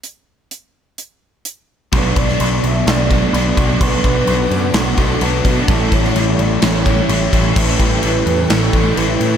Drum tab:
CC |----------------|x-x-x-x-x-x-x-x-|x-x-x-x-x-x-x-x-|x-x-x-x-x-x-x-x-|
HH |x---x---x---x---|----------------|----------------|----------------|
SD |----------------|---o----o-------|--------o-------|---o----o-------|
BD |----------------|o-o-------o---o-|o-o-------o---o-|o-o-------o---o-|

CC |x-x-x-x-x-x-x-x-|
HH |----------------|
SD |--------o-------|
BD |o-o-------o-----|